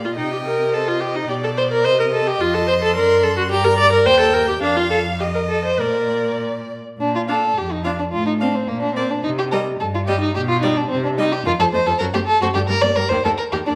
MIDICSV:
0, 0, Header, 1, 5, 480
1, 0, Start_track
1, 0, Key_signature, -2, "major"
1, 0, Tempo, 556070
1, 149, Time_signature, 2, 2, 24, 8
1, 3989, Tempo, 589971
1, 6389, Tempo, 555042
1, 11734, End_track
2, 0, Start_track
2, 0, Title_t, "Violin"
2, 0, Program_c, 0, 40
2, 0, Note_on_c, 0, 77, 44
2, 127, Note_off_c, 0, 77, 0
2, 144, Note_on_c, 0, 79, 53
2, 617, Note_off_c, 0, 79, 0
2, 630, Note_on_c, 0, 72, 53
2, 1105, Note_off_c, 0, 72, 0
2, 1110, Note_on_c, 0, 74, 52
2, 1601, Note_on_c, 0, 75, 59
2, 1614, Note_off_c, 0, 74, 0
2, 2072, Note_on_c, 0, 84, 74
2, 2084, Note_off_c, 0, 75, 0
2, 3024, Note_off_c, 0, 84, 0
2, 3028, Note_on_c, 0, 82, 81
2, 3493, Note_off_c, 0, 82, 0
2, 3504, Note_on_c, 0, 79, 81
2, 3979, Note_off_c, 0, 79, 0
2, 3989, Note_on_c, 0, 77, 76
2, 4464, Note_on_c, 0, 75, 62
2, 4476, Note_off_c, 0, 77, 0
2, 4945, Note_on_c, 0, 74, 48
2, 4957, Note_off_c, 0, 75, 0
2, 5686, Note_off_c, 0, 74, 0
2, 6155, Note_on_c, 0, 77, 52
2, 6264, Note_off_c, 0, 77, 0
2, 6623, Note_on_c, 0, 77, 49
2, 6740, Note_off_c, 0, 77, 0
2, 7109, Note_on_c, 0, 77, 55
2, 7225, Note_off_c, 0, 77, 0
2, 7591, Note_on_c, 0, 74, 56
2, 7704, Note_off_c, 0, 74, 0
2, 8075, Note_on_c, 0, 75, 62
2, 8188, Note_off_c, 0, 75, 0
2, 8552, Note_on_c, 0, 75, 60
2, 8667, Note_off_c, 0, 75, 0
2, 9031, Note_on_c, 0, 74, 69
2, 9142, Note_off_c, 0, 74, 0
2, 9511, Note_on_c, 0, 75, 67
2, 9623, Note_off_c, 0, 75, 0
2, 9745, Note_on_c, 0, 69, 65
2, 9794, Note_off_c, 0, 69, 0
2, 9876, Note_on_c, 0, 72, 58
2, 9923, Note_off_c, 0, 72, 0
2, 9995, Note_on_c, 0, 75, 58
2, 10041, Note_off_c, 0, 75, 0
2, 10103, Note_on_c, 0, 72, 65
2, 10151, Note_off_c, 0, 72, 0
2, 10216, Note_on_c, 0, 69, 79
2, 10265, Note_off_c, 0, 69, 0
2, 10337, Note_on_c, 0, 72, 61
2, 10386, Note_off_c, 0, 72, 0
2, 10584, Note_on_c, 0, 72, 75
2, 10631, Note_off_c, 0, 72, 0
2, 10701, Note_on_c, 0, 67, 68
2, 10749, Note_off_c, 0, 67, 0
2, 10818, Note_on_c, 0, 70, 61
2, 10866, Note_off_c, 0, 70, 0
2, 10934, Note_on_c, 0, 74, 58
2, 10983, Note_off_c, 0, 74, 0
2, 11054, Note_on_c, 0, 70, 57
2, 11104, Note_off_c, 0, 70, 0
2, 11184, Note_on_c, 0, 67, 70
2, 11232, Note_off_c, 0, 67, 0
2, 11299, Note_on_c, 0, 70, 61
2, 11348, Note_off_c, 0, 70, 0
2, 11541, Note_on_c, 0, 70, 64
2, 11590, Note_off_c, 0, 70, 0
2, 11662, Note_on_c, 0, 74, 63
2, 11734, Note_off_c, 0, 74, 0
2, 11734, End_track
3, 0, Start_track
3, 0, Title_t, "Violin"
3, 0, Program_c, 1, 40
3, 0, Note_on_c, 1, 74, 43
3, 136, Note_off_c, 1, 74, 0
3, 141, Note_on_c, 1, 75, 51
3, 1115, Note_on_c, 1, 74, 59
3, 1128, Note_off_c, 1, 75, 0
3, 1598, Note_on_c, 1, 75, 53
3, 1610, Note_off_c, 1, 74, 0
3, 2073, Note_off_c, 1, 75, 0
3, 2078, Note_on_c, 1, 75, 66
3, 2546, Note_off_c, 1, 75, 0
3, 2558, Note_on_c, 1, 74, 64
3, 3019, Note_off_c, 1, 74, 0
3, 3030, Note_on_c, 1, 74, 71
3, 3505, Note_on_c, 1, 79, 68
3, 3518, Note_off_c, 1, 74, 0
3, 3980, Note_off_c, 1, 79, 0
3, 3985, Note_on_c, 1, 77, 66
3, 4462, Note_on_c, 1, 75, 61
3, 4474, Note_off_c, 1, 77, 0
3, 4946, Note_on_c, 1, 74, 52
3, 4959, Note_off_c, 1, 75, 0
3, 5759, Note_off_c, 1, 74, 0
3, 5927, Note_on_c, 1, 62, 75
3, 6035, Note_off_c, 1, 62, 0
3, 6051, Note_on_c, 1, 65, 65
3, 6096, Note_off_c, 1, 65, 0
3, 6164, Note_on_c, 1, 69, 58
3, 6392, Note_on_c, 1, 67, 59
3, 6405, Note_off_c, 1, 69, 0
3, 6517, Note_on_c, 1, 63, 57
3, 6530, Note_off_c, 1, 67, 0
3, 6617, Note_off_c, 1, 63, 0
3, 6622, Note_on_c, 1, 65, 64
3, 6672, Note_off_c, 1, 65, 0
3, 6751, Note_on_c, 1, 62, 57
3, 6800, Note_off_c, 1, 62, 0
3, 6865, Note_on_c, 1, 65, 79
3, 6986, Note_off_c, 1, 65, 0
3, 6991, Note_on_c, 1, 63, 63
3, 7040, Note_off_c, 1, 63, 0
3, 7102, Note_on_c, 1, 62, 59
3, 7235, Note_on_c, 1, 60, 60
3, 7248, Note_off_c, 1, 62, 0
3, 7346, Note_on_c, 1, 58, 62
3, 7359, Note_off_c, 1, 60, 0
3, 7466, Note_off_c, 1, 58, 0
3, 7471, Note_on_c, 1, 62, 66
3, 7575, Note_off_c, 1, 62, 0
3, 7581, Note_on_c, 1, 60, 68
3, 7713, Note_on_c, 1, 62, 62
3, 7726, Note_off_c, 1, 60, 0
3, 7823, Note_off_c, 1, 62, 0
3, 7828, Note_on_c, 1, 63, 77
3, 7878, Note_off_c, 1, 63, 0
3, 7957, Note_on_c, 1, 67, 70
3, 8005, Note_off_c, 1, 67, 0
3, 8070, Note_on_c, 1, 70, 62
3, 8139, Note_off_c, 1, 70, 0
3, 8317, Note_on_c, 1, 69, 66
3, 8365, Note_off_c, 1, 69, 0
3, 8441, Note_on_c, 1, 65, 67
3, 8489, Note_off_c, 1, 65, 0
3, 8546, Note_on_c, 1, 67, 85
3, 8664, Note_off_c, 1, 67, 0
3, 8669, Note_on_c, 1, 63, 70
3, 8788, Note_off_c, 1, 63, 0
3, 8793, Note_on_c, 1, 67, 89
3, 8841, Note_off_c, 1, 67, 0
3, 8915, Note_on_c, 1, 65, 79
3, 9018, Note_off_c, 1, 65, 0
3, 9024, Note_on_c, 1, 63, 72
3, 9156, Note_on_c, 1, 62, 73
3, 9169, Note_off_c, 1, 63, 0
3, 9260, Note_off_c, 1, 62, 0
3, 9265, Note_on_c, 1, 60, 79
3, 9385, Note_off_c, 1, 60, 0
3, 9390, Note_on_c, 1, 62, 64
3, 9439, Note_off_c, 1, 62, 0
3, 9503, Note_on_c, 1, 63, 82
3, 9634, Note_on_c, 1, 67, 79
3, 9647, Note_off_c, 1, 63, 0
3, 9748, Note_off_c, 1, 67, 0
3, 9753, Note_on_c, 1, 65, 107
3, 9800, Note_off_c, 1, 65, 0
3, 9871, Note_on_c, 1, 69, 81
3, 9918, Note_off_c, 1, 69, 0
3, 9982, Note_on_c, 1, 72, 85
3, 10102, Note_on_c, 1, 69, 85
3, 10115, Note_off_c, 1, 72, 0
3, 10202, Note_off_c, 1, 69, 0
3, 10207, Note_on_c, 1, 70, 84
3, 10258, Note_off_c, 1, 70, 0
3, 10338, Note_on_c, 1, 67, 85
3, 10386, Note_off_c, 1, 67, 0
3, 10450, Note_on_c, 1, 69, 96
3, 10573, Note_off_c, 1, 69, 0
3, 10581, Note_on_c, 1, 66, 79
3, 10628, Note_off_c, 1, 66, 0
3, 10685, Note_on_c, 1, 67, 101
3, 10736, Note_off_c, 1, 67, 0
3, 10810, Note_on_c, 1, 70, 96
3, 10923, Note_on_c, 1, 74, 88
3, 10936, Note_off_c, 1, 70, 0
3, 11046, Note_on_c, 1, 70, 93
3, 11059, Note_off_c, 1, 74, 0
3, 11161, Note_on_c, 1, 72, 84
3, 11174, Note_off_c, 1, 70, 0
3, 11289, Note_off_c, 1, 72, 0
3, 11294, Note_on_c, 1, 69, 74
3, 11344, Note_off_c, 1, 69, 0
3, 11408, Note_on_c, 1, 70, 85
3, 11460, Note_off_c, 1, 70, 0
3, 11536, Note_on_c, 1, 67, 71
3, 11586, Note_off_c, 1, 67, 0
3, 11657, Note_on_c, 1, 62, 91
3, 11708, Note_off_c, 1, 62, 0
3, 11734, End_track
4, 0, Start_track
4, 0, Title_t, "Viola"
4, 0, Program_c, 2, 41
4, 39, Note_on_c, 2, 65, 64
4, 85, Note_off_c, 2, 65, 0
4, 153, Note_on_c, 2, 63, 62
4, 269, Note_off_c, 2, 63, 0
4, 277, Note_on_c, 2, 67, 65
4, 323, Note_off_c, 2, 67, 0
4, 396, Note_on_c, 2, 70, 65
4, 635, Note_on_c, 2, 69, 70
4, 648, Note_off_c, 2, 70, 0
4, 759, Note_on_c, 2, 65, 69
4, 772, Note_off_c, 2, 69, 0
4, 869, Note_on_c, 2, 67, 69
4, 882, Note_off_c, 2, 65, 0
4, 996, Note_on_c, 2, 63, 64
4, 1009, Note_off_c, 2, 67, 0
4, 1106, Note_off_c, 2, 63, 0
4, 1111, Note_on_c, 2, 67, 72
4, 1161, Note_off_c, 2, 67, 0
4, 1240, Note_on_c, 2, 69, 66
4, 1288, Note_off_c, 2, 69, 0
4, 1357, Note_on_c, 2, 72, 82
4, 1406, Note_off_c, 2, 72, 0
4, 1483, Note_on_c, 2, 70, 81
4, 1594, Note_on_c, 2, 72, 92
4, 1607, Note_off_c, 2, 70, 0
4, 1718, Note_off_c, 2, 72, 0
4, 1721, Note_on_c, 2, 70, 70
4, 1769, Note_off_c, 2, 70, 0
4, 1840, Note_on_c, 2, 69, 78
4, 1962, Note_on_c, 2, 67, 87
4, 1975, Note_off_c, 2, 69, 0
4, 2073, Note_on_c, 2, 65, 87
4, 2086, Note_off_c, 2, 67, 0
4, 2193, Note_on_c, 2, 69, 79
4, 2206, Note_off_c, 2, 65, 0
4, 2306, Note_off_c, 2, 69, 0
4, 2311, Note_on_c, 2, 72, 91
4, 2360, Note_off_c, 2, 72, 0
4, 2438, Note_on_c, 2, 69, 83
4, 2548, Note_off_c, 2, 69, 0
4, 2553, Note_on_c, 2, 70, 88
4, 2788, Note_on_c, 2, 69, 78
4, 2801, Note_off_c, 2, 70, 0
4, 2905, Note_off_c, 2, 69, 0
4, 2910, Note_on_c, 2, 66, 85
4, 2957, Note_off_c, 2, 66, 0
4, 3022, Note_on_c, 2, 67, 99
4, 3145, Note_on_c, 2, 70, 88
4, 3158, Note_off_c, 2, 67, 0
4, 3258, Note_off_c, 2, 70, 0
4, 3264, Note_on_c, 2, 74, 110
4, 3380, Note_off_c, 2, 74, 0
4, 3387, Note_on_c, 2, 70, 85
4, 3503, Note_on_c, 2, 72, 106
4, 3516, Note_off_c, 2, 70, 0
4, 3619, Note_off_c, 2, 72, 0
4, 3624, Note_on_c, 2, 69, 83
4, 3740, Note_on_c, 2, 70, 80
4, 3753, Note_off_c, 2, 69, 0
4, 3862, Note_off_c, 2, 70, 0
4, 3867, Note_on_c, 2, 67, 82
4, 3915, Note_off_c, 2, 67, 0
4, 3984, Note_on_c, 2, 62, 84
4, 4107, Note_on_c, 2, 65, 74
4, 4119, Note_off_c, 2, 62, 0
4, 4212, Note_off_c, 2, 65, 0
4, 4217, Note_on_c, 2, 69, 84
4, 4282, Note_off_c, 2, 69, 0
4, 4454, Note_on_c, 2, 67, 69
4, 4502, Note_off_c, 2, 67, 0
4, 4577, Note_on_c, 2, 70, 67
4, 4625, Note_off_c, 2, 70, 0
4, 4696, Note_on_c, 2, 69, 73
4, 4816, Note_off_c, 2, 69, 0
4, 4824, Note_on_c, 2, 72, 72
4, 4944, Note_on_c, 2, 70, 71
4, 4957, Note_off_c, 2, 72, 0
4, 5437, Note_off_c, 2, 70, 0
4, 6158, Note_on_c, 2, 62, 52
4, 6266, Note_off_c, 2, 62, 0
4, 6635, Note_on_c, 2, 62, 49
4, 6747, Note_off_c, 2, 62, 0
4, 7122, Note_on_c, 2, 60, 55
4, 7232, Note_off_c, 2, 60, 0
4, 7595, Note_on_c, 2, 58, 47
4, 7706, Note_off_c, 2, 58, 0
4, 8079, Note_on_c, 2, 55, 59
4, 8190, Note_off_c, 2, 55, 0
4, 8558, Note_on_c, 2, 55, 60
4, 8670, Note_off_c, 2, 55, 0
4, 9036, Note_on_c, 2, 55, 69
4, 9144, Note_off_c, 2, 55, 0
4, 9507, Note_on_c, 2, 55, 64
4, 9621, Note_off_c, 2, 55, 0
4, 9752, Note_on_c, 2, 51, 70
4, 9800, Note_off_c, 2, 51, 0
4, 9871, Note_on_c, 2, 53, 51
4, 9918, Note_off_c, 2, 53, 0
4, 9984, Note_on_c, 2, 57, 61
4, 10032, Note_off_c, 2, 57, 0
4, 10104, Note_on_c, 2, 53, 52
4, 10152, Note_off_c, 2, 53, 0
4, 10223, Note_on_c, 2, 54, 83
4, 10271, Note_off_c, 2, 54, 0
4, 10344, Note_on_c, 2, 57, 62
4, 10392, Note_off_c, 2, 57, 0
4, 10584, Note_on_c, 2, 57, 55
4, 10631, Note_off_c, 2, 57, 0
4, 10698, Note_on_c, 2, 50, 67
4, 10746, Note_off_c, 2, 50, 0
4, 10817, Note_on_c, 2, 55, 57
4, 10866, Note_off_c, 2, 55, 0
4, 10940, Note_on_c, 2, 58, 57
4, 10989, Note_off_c, 2, 58, 0
4, 11056, Note_on_c, 2, 55, 57
4, 11106, Note_off_c, 2, 55, 0
4, 11177, Note_on_c, 2, 51, 83
4, 11227, Note_off_c, 2, 51, 0
4, 11298, Note_on_c, 2, 51, 62
4, 11347, Note_off_c, 2, 51, 0
4, 11540, Note_on_c, 2, 51, 60
4, 11589, Note_off_c, 2, 51, 0
4, 11661, Note_on_c, 2, 58, 62
4, 11734, Note_off_c, 2, 58, 0
4, 11734, End_track
5, 0, Start_track
5, 0, Title_t, "Cello"
5, 0, Program_c, 3, 42
5, 0, Note_on_c, 3, 46, 49
5, 144, Note_on_c, 3, 48, 52
5, 157, Note_off_c, 3, 46, 0
5, 1103, Note_off_c, 3, 48, 0
5, 1108, Note_on_c, 3, 47, 53
5, 1594, Note_on_c, 3, 48, 56
5, 1607, Note_off_c, 3, 47, 0
5, 2069, Note_off_c, 3, 48, 0
5, 2074, Note_on_c, 3, 41, 61
5, 2553, Note_on_c, 3, 42, 61
5, 2566, Note_off_c, 3, 41, 0
5, 3026, Note_on_c, 3, 43, 70
5, 3039, Note_off_c, 3, 42, 0
5, 3500, Note_on_c, 3, 39, 66
5, 3513, Note_off_c, 3, 43, 0
5, 3983, Note_off_c, 3, 39, 0
5, 3988, Note_on_c, 3, 41, 62
5, 4939, Note_on_c, 3, 46, 58
5, 4951, Note_off_c, 3, 41, 0
5, 5755, Note_off_c, 3, 46, 0
5, 5921, Note_on_c, 3, 46, 57
5, 6310, Note_off_c, 3, 46, 0
5, 6384, Note_on_c, 3, 41, 57
5, 6791, Note_off_c, 3, 41, 0
5, 6871, Note_on_c, 3, 45, 57
5, 7275, Note_off_c, 3, 45, 0
5, 7357, Note_on_c, 3, 46, 56
5, 7754, Note_off_c, 3, 46, 0
5, 7834, Note_on_c, 3, 48, 57
5, 8237, Note_off_c, 3, 48, 0
5, 8316, Note_on_c, 3, 43, 62
5, 8717, Note_off_c, 3, 43, 0
5, 8797, Note_on_c, 3, 47, 67
5, 9190, Note_off_c, 3, 47, 0
5, 9268, Note_on_c, 3, 48, 66
5, 9671, Note_off_c, 3, 48, 0
5, 9746, Note_on_c, 3, 41, 78
5, 9795, Note_off_c, 3, 41, 0
5, 9868, Note_on_c, 3, 41, 54
5, 9916, Note_off_c, 3, 41, 0
5, 9986, Note_on_c, 3, 41, 55
5, 10034, Note_off_c, 3, 41, 0
5, 10105, Note_on_c, 3, 41, 62
5, 10152, Note_off_c, 3, 41, 0
5, 10219, Note_on_c, 3, 42, 72
5, 10268, Note_off_c, 3, 42, 0
5, 10341, Note_on_c, 3, 42, 61
5, 10389, Note_off_c, 3, 42, 0
5, 10576, Note_on_c, 3, 42, 63
5, 10625, Note_off_c, 3, 42, 0
5, 10691, Note_on_c, 3, 43, 77
5, 10741, Note_off_c, 3, 43, 0
5, 10813, Note_on_c, 3, 43, 64
5, 10862, Note_off_c, 3, 43, 0
5, 10932, Note_on_c, 3, 43, 54
5, 10982, Note_off_c, 3, 43, 0
5, 11056, Note_on_c, 3, 43, 56
5, 11105, Note_off_c, 3, 43, 0
5, 11177, Note_on_c, 3, 39, 70
5, 11226, Note_off_c, 3, 39, 0
5, 11299, Note_on_c, 3, 39, 58
5, 11348, Note_off_c, 3, 39, 0
5, 11542, Note_on_c, 3, 39, 52
5, 11591, Note_off_c, 3, 39, 0
5, 11659, Note_on_c, 3, 41, 67
5, 11734, Note_off_c, 3, 41, 0
5, 11734, End_track
0, 0, End_of_file